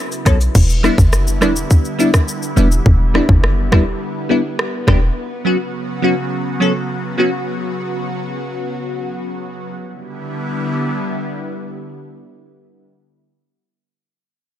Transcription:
Already playing: C#3 F#3 B3 E4
0.12 shaker, maracas
0.25 B1 F#3 B3 C#4 A4 C#5, kick, cross-stick, closed hi-hat, maracas, shaker
0.41 maracas, shaker
0.55 E1 D3 G3 B3 E4, kick, crash, shaker
0.70 shaker
0.83 G3 B3 D4 E4, cross-stick, shaker
0.98 F#1, kick, shaker
1.13 cross-stick, shaker
1.27 shaker
1.41 E1 G3 B3 D4 E4, cross-stick, shaker
1.56 shaker
1.71 kick, shaker
1.85 shaker
1.99 G3 B3 D4 E4, shaker
2.14 kick, cross-stick, shaker
2.28 shaker
2.42 shaker
2.56 E1 G3 B3 D4 E4, shaker
2.72 shaker
2.86 E1, kick
3.14 G3 B3 D4 E4, cross-stick
3.29 F#1, kick
3.44 cross-stick
3.72 E1 G3 B3 D4 E4, kick, cross-stick
4.29 G3 B3 D4 E4
4.59 cross-stick
4.87 E1 G3 B3 D4 G4, kick, cross-stick
5.17 C#3 F#3 F#4
5.45 F#3 B3 C#4 F#4
6.02 F#3 B3 C#4 F#4
6.60 F#3 B3 C#4 A4
7.18 F#3 B3 C#4 F#4
9.78 D3 G3 B3 E4

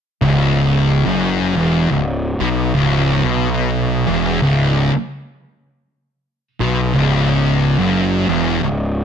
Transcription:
0.22 C#1 C#2
1.06 F#1 F#2
1.55 E1 E2
1.89 C#1 C#2
2.40 B1 B2
2.74 C#1 C#2
3.24 B1 B2
4.07 E1 E2
4.42 C#1 C#2
6.60 B1 B2
6.94 C#1 C#2
7.79 F#1 F#2
8.28 E1 E2
8.62 C#1 C#2

